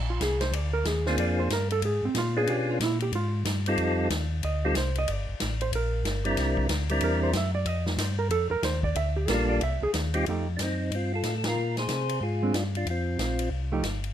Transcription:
Already playing: A#1
0.10 F4
0.20 C2 G#4, snare, hi-hat pedal, ride
0.41 C5, snare, ride
0.51 D2 D5, ride
0.73 A#4
0.85 D#2 G#4, snare, hi-hat pedal, ride
1.06 A#3 C4 D4 F4 G#4 C5, snare
1.17 F2 D5, ride
1.39 C5
1.50 G2 A#4, snare, hi-hat pedal, ride
1.70 A4, ride
1.82 G#2 G#4, ride
2.03 G#2 C4
2.14 A#2 F4, snare, hi-hat pedal, ride
2.37 B3 C#4 D4 F4 G#4
2.47 B2 G4, ride
2.70 F4
2.80 A#2 E4, snare, hi-hat pedal, ride
3.00 G4, ride
3.12 G#2 F4, ride
3.45 G2, snare, hi-hat pedal, ride
3.66 G3 C4 D#4 F4 A4, ride
3.77 F2, ride
4.10 D#2, snare, hi-hat pedal, ride
4.43 D2 D#5, ride
4.65 G3 C4 D#4 F4 G4 A4
4.75 C2 C5, snare, hi-hat pedal, ride
4.95 D#5, ride
5.08 G1 D5, ride
5.29 G1
5.40 A1, snare, hi-hat pedal, ride
5.61 C5, ride
5.72 A#1 A#4, ride
6.04 G1, snare, hi-hat pedal, ride
6.24 G3 C4 D4 E4 A#4, ride
6.37 C2, snare, ride
6.57 kick
6.68 D2, snare, hi-hat pedal, ride
6.89 G3 C4 D4 E4 A#4, ride
7.01 E2 A#4, ride
7.23 C5
7.33 F#2, snare, hi-hat pedal, ride
7.37 E5
7.55 D5
7.66 F2 D#5, ride
7.86 D5, snare
7.97 G2 C5, snare, hi-hat pedal, ride
8.19 A#4
8.29 F2 A4, ride
8.50 F2 A#4
8.62 D#2 C5, snare, hi-hat pedal, ride
8.83 D5, kick
8.95 D2 E5, ride
9.16 G4
9.28 A#1 G3 A#3 D4 F4 A4 A#4, snare, hi-hat pedal, ride
9.49 D5
9.61 C2 E5, ride
9.81 C2 G#4
9.93 D#2, snare, hi-hat pedal, ride
10.14 G3 C4 D#4 F4 G4, ride
10.26 F2 F3 A3 D#4 G4, ride
10.57 F#2 D4, snare, hi-hat pedal, ride
10.62 C4 D#4
10.91 G2 C4, ride
10.96 F4
11.14 F4 A4
11.23 A2, snare, hi-hat pedal, ride
11.38 A4
11.44 F4, snare, ride
11.48 A#4
11.56 A#2
11.77 G#4 C5, snare, ride
11.88 C3, snare, hi-hat pedal, ride
12.09 ride
12.20 G#2 F4 G#4
12.42 G#3 C4 D4
12.53 G2 D4 F4, snare, hi-hat pedal, ride
12.75 D4 F4, ride
12.86 F2, ride
12.90 C4 F4
13.17 A#1, snare, hi-hat pedal, ride
13.39 ride
13.50 C2
13.72 F3 A3 D#4 G4
13.83 G1, snare, hi-hat pedal, ride
14.04 ride

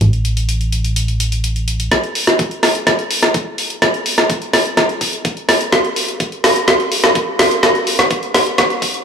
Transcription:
0.01 A1, closed hi-hat
0.13 closed hi-hat
0.25 closed hi-hat
0.37 closed hi-hat
0.49 closed hi-hat
0.61 closed hi-hat
0.72 closed hi-hat
0.84 closed hi-hat
0.96 closed hi-hat
1.08 closed hi-hat
1.20 closed hi-hat
1.32 closed hi-hat
1.44 closed hi-hat
1.56 closed hi-hat
1.68 closed hi-hat
1.80 closed hi-hat
1.92 kick, snare, closed hi-hat
2.04 closed hi-hat
2.15 open hi-hat
2.27 snare, closed hi-hat
2.39 kick, closed hi-hat
2.51 closed hi-hat
2.63 snare, open hi-hat
2.75 closed hi-hat
2.87 kick, snare, closed hi-hat
2.99 closed hi-hat
3.11 open hi-hat
3.23 snare, closed hi-hat
3.34 kick, closed hi-hat
3.58 open hi-hat
3.70 closed hi-hat
3.82 kick, snare, closed hi-hat
3.94 closed hi-hat
4.06 open hi-hat
4.18 snare, closed hi-hat
4.30 kick, closed hi-hat
4.42 closed hi-hat
4.53 kick, snare, open hi-hat
4.66 closed hi-hat
4.77 kick, snare, closed hi-hat
4.89 closed hi-hat
5.01 kick, open hi-hat
5.13 closed hi-hat
5.25 kick, closed hi-hat
5.37 closed hi-hat
5.49 snare, open hi-hat
5.61 closed hi-hat
5.72 kick, snare, closed hi-hat
5.85 closed hi-hat
5.96 open hi-hat
6.08 closed hi-hat
6.20 kick, closed hi-hat
6.32 closed hi-hat
6.44 snare, open hi-hat
6.56 closed hi-hat
6.68 kick, snare, closed hi-hat
6.80 closed hi-hat
6.92 open hi-hat
7.04 snare, closed hi-hat
7.15 kick, closed hi-hat
7.39 snare, open hi-hat
7.51 closed hi-hat
7.63 kick, snare, closed hi-hat
7.75 closed hi-hat
7.87 open hi-hat
7.99 snare, closed hi-hat
8.11 kick, closed hi-hat
8.23 closed hi-hat
8.34 kick, snare, open hi-hat
8.47 closed hi-hat
8.58 kick, snare, closed hi-hat
8.70 closed hi-hat
8.82 kick, open hi-hat
8.94 closed hi-hat

